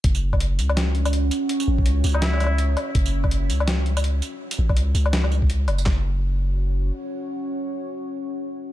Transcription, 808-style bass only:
0.04 F#1
0.59 C#2
1.67 A1
1.86 C#2
2.04 C#2
2.95 F#1
3.49 C#2
4.58 A1
4.76 C#2
4.94 C#2
5.67 F#1
5.86 F#1

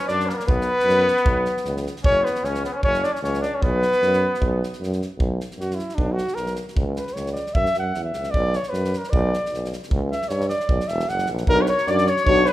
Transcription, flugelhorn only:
0.08 D5
0.27 A#4
0.33 A#4 B4
0.46 B4
2.05 C#5
2.25 B4
2.45 C#5
2.65 B4
2.77 C#5
2.84 C#5
3.04 D5
3.14 C#5
3.24 C#5
3.43 D5
3.55 C#5
3.63 B4
5.60 F#4
5.75 E4
5.95 D4
6.13 F#4
6.35 A#4
6.97 B4
7.14 C#5
7.33 D5
7.54 E5
7.79 F#5
8.04 E5
8.31 D5
8.56 C#5
8.69 B4
8.98 A#4
9.10 D5
10.11 E5
10.29 C#5
10.49 D5
10.88 E5
11.09 F#5
11.50 A#4
11.62 C#5
11.66 B4 C#5
11.88 D5
12.08 C#5
12.27 C#5
12.46 B4

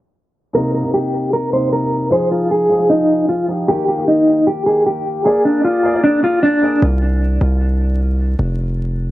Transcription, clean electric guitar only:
0.55 A#4
0.74 A#4
0.94 G4
1.33 A#4
1.53 C5
1.73 A#4
2.12 C5
2.31 F4
2.51 G#4
2.90 D#4
3.29 F4
3.68 G4
3.88 G4
4.08 D#4
4.47 G4
4.66 G#4
4.86 G4
5.26 G#4
5.45 D4
5.64 F4
6.04 D4
6.24 F4
6.43 D4

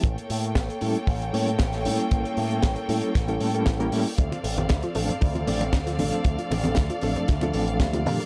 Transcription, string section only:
0.04 A#3 A4 C#5 G5
4.19 C4 A4 D5 F5

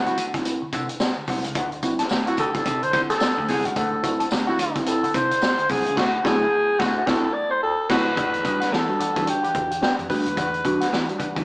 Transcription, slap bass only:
0.17 D3
0.62 muted slap bass stroke
0.73 C3
1.28 C2
1.44 C#2
1.55 D2
2.00 muted slap bass stroke
2.11 D2
2.38 D3
2.66 C3
2.94 D3
3.38 D2
3.49 C2
3.65 C#2
3.76 D2
4.21 muted slap bass stroke
4.31 D2
4.59 D3
5.03 muted slap bass stroke
5.15 C3
5.70 C2
5.87 C#2
5.97 D2
6.25 D2
6.80 D2
7.07 D2
7.90 D2
8.17 E2
8.45 E2
8.72 E3
9.00 muted slap bass stroke
9.16 E3
9.55 E2
9.99 F2
10.10 D2
10.27 D#2
10.37 E2
10.65 E2
10.92 E3
11.20 muted slap bass stroke
11.36 E3

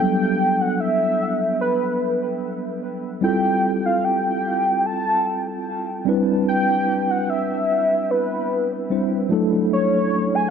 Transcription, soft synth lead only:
0.00 G5
0.61 F#5
0.80 E5
1.61 B4
3.23 G5
3.86 F5
4.04 G5
4.86 A5
6.48 G5
7.11 F#5
7.29 E5
8.11 B4
9.73 C#5
10.35 G#5

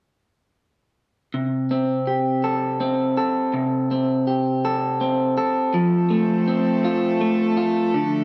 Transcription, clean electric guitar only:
1.34 C3
1.71 C4
2.07 G4
2.44 A4
2.80 C4
3.17 A4
3.54 C3
3.91 C4
4.27 G4
4.65 A4
5.01 C4
5.38 A4
5.74 F3
6.10 A3
6.48 C4
6.85 F4
7.21 A3
7.57 F4
7.94 D3

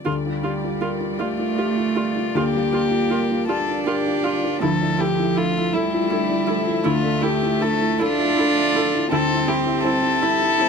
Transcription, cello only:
0.05 G3
1.20 A3
2.36 A#3
3.50 D4
4.61 F3
5.72 G3
6.85 A3
8.00 D4
9.12 C4
10.23 E4

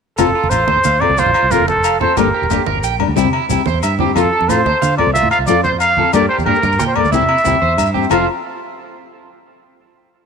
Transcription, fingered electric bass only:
0.18 F1
0.43 F1
0.51 A1
0.68 D2
0.85 D2
1.09 C2
1.26 A1
1.43 C2
1.51 F1
2.17 G1
2.42 E1
2.51 G1
2.67 G1
2.84 A#1
3.08 D2
3.17 C2
3.25 C3
3.50 C2
3.67 E2
3.84 G2
4.16 F2
4.41 F2
4.49 A2
4.66 D2
4.82 D3
5.07 C2
5.23 A2
5.39 C2
5.47 F2
6.14 G2
6.38 E2
6.46 G2
6.63 G2
6.79 A#2
7.04 D2
7.12 C2
7.21 C3
7.46 C2
7.62 E2
7.77 G2
8.11 F1

